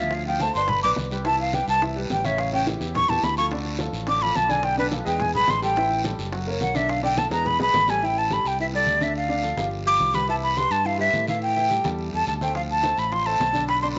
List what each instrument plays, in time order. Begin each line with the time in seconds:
Already playing: fingered electric bass D2
0.00 upright piano F3 F4 F5, flute E5
0.11 flute F5, high bongo, high conga, long guiro
0.25 upright piano F3 F4 F5, flute G5, high bongo, high conga
0.40 upright piano A3 A4 C5, flute A5, high bongo, high conga, short guiro
0.53 fingered electric bass G1, upright piano B3 B4 D5, flute C6, high bongo, high conga, short guiro
0.68 flute B5, high bongo, high conga, low conga, long guiro
0.83 fingered electric bass B1, upright piano B3 B4 D5, flute D6, high conga, low conga
0.96 fingered electric bass C2, high bongo, low bongo, high conga, short guiro
1.11 upright piano G3 G4 B4, high bongo, high conga, short guiro
1.25 upright piano E3 E4 E5, flute A5, high bongo, high conga, long guiro
1.39 flute F5, high bongo, high conga
1.53 upright piano G3 G4 B4, flute G5, high bongo, high conga, short guiro
1.68 fingered electric bass C2, flute A5, high bongo, short guiro
1.82 upright piano E3 E4 E5, high bongo, high conga, long guiro
1.96 upright piano G3 G4 B4, high conga
2.10 fingered electric bass A1, flute G5, high bongo, low bongo, high conga, short guiro
2.24 upright piano C#3 C#4 C#5, flute E5, high bongo, high conga, short guiro
2.38 flute F5, high bongo, high conga, long guiro
2.53 upright piano C#3 C#4 C#5, flute G5, high bongo, high conga
2.66 upright piano E3 E4 G4, high bongo, high conga, short guiro
2.80 fingered electric bass E2, upright piano E3 E4 G4, high bongo, high conga, short guiro
2.95 flute C#6, high bongo, high conga, low conga, long guiro
3.08 fingered electric bass E2, upright piano E3 E4 G4, flute A5, high conga, low conga
3.23 fingered electric bass D2, flute B5, high bongo, low bongo, high conga, short guiro
3.37 upright piano F3 F4 A4, flute C#6, high bongo, short guiro
3.51 upright piano D3 D4 D5, high bongo, high conga, long guiro
3.65 high bongo, high conga
3.79 upright piano F3 F4 A4, high bongo, high conga, short guiro
3.93 fingered electric bass A1, high bongo, short guiro
4.07 upright piano D3 D4 D5, flute D6, high bongo, high conga, long guiro
4.22 upright piano F3 F4 A4, flute B5, high conga
4.36 fingered electric bass B1, flute A5, high bongo, low bongo, high conga, short guiro
4.49 upright piano D3 D4 D5, flute G#5, high bongo, high conga, short guiro
4.63 flute G5, high bongo, high conga, long guiro
4.78 upright piano D3 D4 D5, flute B4, high bongo, high conga
4.91 upright piano F3 F4 A4, high bongo, high conga, short guiro
5.05 fingered electric bass E2, upright piano G#3 G#4 B4, flute G5, high bongo, high conga, short guiro
5.20 flute G#5, high bongo, high conga, low conga, long guiro
5.34 fingered electric bass B1, upright piano G#3 G#4 B4, flute B5, high conga, low conga
5.48 fingered electric bass A1, flute C6, high bongo, low bongo, high conga, short guiro
5.62 upright piano G3 G4 A4, flute G5, high bongo, short guiro
5.76 upright piano E3 E4 E5, high bongo, high conga, long guiro
5.91 high bongo, high conga
6.04 upright piano G3 G4 A4, high bongo, high conga, short guiro
6.19 fingered electric bass F#1, high bongo, short guiro
6.32 upright piano F#3 F#4 F#5, high bongo, high conga, long guiro
6.47 upright piano A#3 A#4 C#5, high conga
6.61 fingered electric bass B1, flute F#5, high bongo, low bongo, high conga, short guiro
6.75 upright piano D3 D4 D5, flute E5, high bongo, high conga, short guiro
6.89 flute F5, high bongo, long guiro
7.03 upright piano D3 D4 D5, flute G5, high bongo, high conga
7.17 upright piano F3 F4 A4, flute A5, high bongo, high conga, short guiro
7.30 fingered electric bass E2, upright piano G#3 G#4 B4, flute A#5, high bongo, high conga, short guiro
7.45 flute B5, high bongo, high conga, low conga, long guiro
7.59 fingered electric bass B1, upright piano G#3 G#4 B4, flute B5, low bongo, high conga
7.74 fingered electric bass A1, low bongo, high conga, short guiro
7.88 upright piano G3 G4 A4, flute G#5, low bongo, short guiro
8.02 upright piano E3 E4 E5, flute G5, high conga, long guiro
8.17 flute A5, high conga
8.30 upright piano G3 G4 A4, flute B5, high conga, short guiro
8.45 fingered electric bass C2, flute G5, high conga, short guiro
8.59 upright piano E3 E4 E5, flute E5, high conga, long guiro
8.73 upright piano G3 G4 A4, flute D5, high conga
8.86 fingered electric bass D2, high conga, short guiro
9.01 upright piano D3 D4 D5, flute E5, high conga, short guiro
9.15 flute F5, high conga, long guiro
9.29 upright piano D3 D4 D5, high conga
9.42 upright piano F3 F4 A4, high conga, short guiro
9.57 fingered electric bass G1, upright piano F3 F4 G4, high conga, short guiro
9.71 high conga, long guiro
9.85 upright piano F3 F4 G4, flute D6, high conga
10.00 fingered electric bass C2, high conga, short guiro
10.14 upright piano G3 G4 B4, flute B5, high conga, short guiro
10.28 upright piano E3 E4 E5, flute A5, long guiro
10.43 flute B5, high conga
10.56 upright piano G3 G4 B4, flute C6, high conga, short guiro
10.71 fingered electric bass G2, flute A5, high conga, short guiro
10.85 upright piano E3 E4 E5, flute F5, high conga, long guiro
10.98 upright piano G3 G4 B4, flute E5, high conga
11.13 fingered electric bass A2, high conga, short guiro
11.28 upright piano E3 E4 E5, flute F5, high conga, short guiro
11.42 flute G5, high conga, long guiro
11.56 upright piano E3 E4 E5, high conga
11.70 upright piano G3 G4 A4, high conga, short guiro
11.84 fingered electric bass E2, upright piano G3 G4 A4, high conga, short guiro
11.99 high conga, long guiro
12.12 fingered electric bass E2, upright piano G3 G4 A4, flute A5, high conga
12.27 fingered electric bass D2, flute A5, high conga, short guiro
12.41 upright piano A3 A4 C5, flute G5, high conga, short guiro
12.55 upright piano F3 F4 F5, flute F5, high bongo, long guiro
12.70 flute A5, high conga
12.83 upright piano A3 A4 C5, high bongo, high conga, short guiro
12.98 fingered electric bass A1, flute B5, high bongo, high conga, short guiro
13.11 upright piano F3 F4 F5, flute C6, high bongo, high conga, long guiro
13.26 upright piano A3 A4 C5, flute A5, high bongo, high conga
13.40 fingered electric bass B1, high bongo, low bongo, high conga, short guiro
13.53 upright piano D3 D4 D5, high bongo, high conga, short guiro
13.68 flute B5, high bongo, long guiro
13.82 upright piano D3 D4 D5, flute C6, high conga
13.96 flute B5